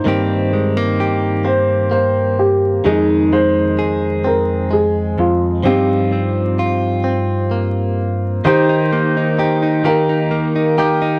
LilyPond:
<<
  \new Staff \with { instrumentName = "Upright piano" } { \time 6/8 \key ees \major \tempo 4. = 43 << { c''4. c''8 c''8 g'8 | aes'8 c''4 bes'8 aes'8 f'8 | g'2~ g'8 r8 | c''4. bes'4. | } \\ { ees'4. r4. | ees'4. r4. | c'2~ c'8 r8 | g'4. g'4. | } >> }
  \new Staff \with { instrumentName = "Clean electric guitar" } { \time 6/8 \key ees \major << { <bes c' g'>8 aes16 bes16 g'2 | <aes ees'>8 aes8 aes'2 | <c' ees' f'>8 c'8 f'2 | g'16 ees'8 ees'16 g'16 ees'16 g'16 ees'8 ees'16 g'16 ees'16 | } \\ { g,2. | f,2~ f,8 f,8 | g,2. | ees8 bes4 ees8 bes4 | } >> }
  \new Staff \with { instrumentName = "Pedal steel guitar" } { \time 6/8 \key ees \major r2. | r2. | r2. | ees'2. | }
  \new Staff \with { instrumentName = "Clean electric guitar" } { \time 6/8 \key ees \major ees4. c'8 bes4 | ees4. c'8 aes4 | f4. c'8 bes4 | ees4 ees'8 bes4 <bes ees' g'>8 | }
>>